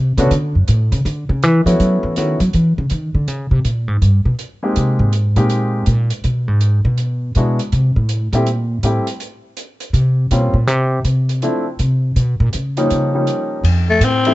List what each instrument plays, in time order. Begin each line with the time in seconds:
Already playing: upright bass C3
0.17 upright bass C#3, grand piano A3 B3 C#4 D4 F#4, closed hi-hat
0.31 upright bass D3, closed hi-hat
0.55 upright bass F#2
0.68 upright bass A2, closed hi-hat
0.92 upright bass C#3, closed hi-hat
1.05 upright bass D3, closed hi-hat
1.29 upright bass C#3
1.43 upright bass E3, closed hi-hat
1.66 upright bass F3, grand piano A3 B3 C#4 E4 F#4, closed hi-hat
1.80 upright bass F#3, closed hi-hat
2.03 upright bass E3
2.16 upright bass D#3, grand piano A3 B3 C#4 E4 F#4, closed hi-hat
2.40 upright bass F#3, closed hi-hat
2.53 upright bass E3, closed hi-hat
2.78 upright bass C#3
2.90 upright bass D#3, closed hi-hat
3.15 upright bass D3
3.28 upright bass C#3, closed hi-hat
3.51 upright bass C3
3.65 upright bass A#2, closed hi-hat
3.88 upright bass G#2
4.02 upright bass G2, closed hi-hat
4.25 upright bass B2
4.39 closed hi-hat
4.63 grand piano G#3 A#3 C4 D#4 G4
4.76 upright bass C3, closed hi-hat
4.99 upright bass G#2
5.13 closed hi-hat
5.36 upright bass A#2, grand piano G#3 A#3 C4 D#4 G4, closed hi-hat
5.50 closed hi-hat
5.86 upright bass A#2, closed hi-hat
6.10 closed hi-hat
6.24 upright bass B2, closed hi-hat
6.48 upright bass G#2
6.61 closed hi-hat
6.85 upright bass B2
6.98 closed hi-hat
7.35 upright bass B2, grand piano G#3 B3 D4 E4 F#4, closed hi-hat
7.59 closed hi-hat
7.72 upright bass C3, closed hi-hat
7.96 upright bass A2
8.09 closed hi-hat
8.33 upright bass A#2, grand piano G3 A3 C4 E4 G4, closed hi-hat
8.46 closed hi-hat
8.83 upright bass A2, grand piano G3 A3 C4 E4 G4, closed hi-hat
9.07 closed hi-hat
9.20 closed hi-hat
9.57 closed hi-hat
9.80 closed hi-hat
9.93 upright bass C3, closed hi-hat
10.31 upright bass B2, grand piano G3 A#3 C4 C#4 F4, closed hi-hat
10.54 upright bass A#2
10.67 upright bass C3, closed hi-hat
11.05 upright bass C3, closed hi-hat
11.29 closed hi-hat
11.42 grand piano F3 A3 C4 D4 E4, closed hi-hat
11.79 upright bass C3, closed hi-hat
12.16 upright bass B2, closed hi-hat
12.40 upright bass A#2
12.53 upright bass C#3, closed hi-hat
12.77 grand piano F3 G3 A#3 C#4 D#4, closed hi-hat
12.90 upright bass C#3, closed hi-hat
13.14 grand piano F3 G3 A#3 C#4 D#4
13.27 closed hi-hat
13.63 upright bass F2, kick, ride
13.90 tenor saxophone A3
14.01 upright bass A2, tenor saxophone C4, kick, hi-hat pedal, ride
14.25 grand piano F3 G3 A3 C4 E4, ride